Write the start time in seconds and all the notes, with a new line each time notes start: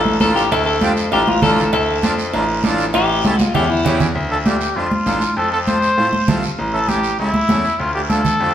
Already playing: A1 A4
0.05 high conga
0.20 A1 D4 F4 A4, high conga, short guiro
0.36 G4, short guiro
0.52 D2 A4, cowbell, long guiro
0.66 A4
0.81 F2 D4 F4 G4, high conga, short guiro
0.97 short guiro
1.12 A1 D4 F4 G4 A4, cowbell, long guiro
1.27 F4, high conga
1.42 A1 D4 F4 A4, high conga, low conga, short guiro
1.58 short guiro
1.73 D2 A4, cowbell, long guiro
2.03 F2 D4 F4 A4, high conga, short guiro
2.19 short guiro
2.33 A1 D4 F4 A4, cowbell, long guiro
2.64 A1 D4 F4 A4, high conga, short guiro
2.78 short guiro
2.93 A1 G4, cowbell, long guiro
3.24 C#2 C#4 E4 A4, high conga, short guiro
3.39 high conga, short guiro
3.43 F4
3.54 E2 C#4 E4 G4 A4, cowbell, low conga, long guiro
3.70 E4
3.85 E2 C#4 E4 G4, low conga, short guiro
4.00 low conga, short guiro
4.15 D2, long guiro
4.30 D4 F4 A4
4.46 D4 F4 G4 A4, high conga, short guiro
4.61 short guiro
4.76 F2 D4 F4 A4, long guiro
4.91 high conga
5.06 A1 D4 F4 A4, high conga, short guiro
5.21 short guiro
5.37 F2 A4, long guiro
5.52 C4 F4 A4
5.67 C4 F4 A4 C5, high conga, short guiro
5.82 short guiro
5.97 A2 C4 F4 A4, long guiro
6.13 high conga
6.27 C2 C4 F4 A4, high conga, low conga, short guiro
6.43 short guiro
6.58 A1, long guiro
6.73 C#4 E4 A4
6.88 C#4 E4 G4 A4, high conga, short guiro
7.04 short guiro
7.19 C#2 C#4 E4 A4, long guiro
7.34 high conga
7.49 E2 C#4 E4 A4, high conga, short guiro
7.65 short guiro
7.79 D2 F4, long guiro
7.95 D4 F4 G4 A4
8.10 D4 F4 A4, high conga, short guiro
8.25 low conga, short guiro
8.40 F2 D4 F4 G4, long guiro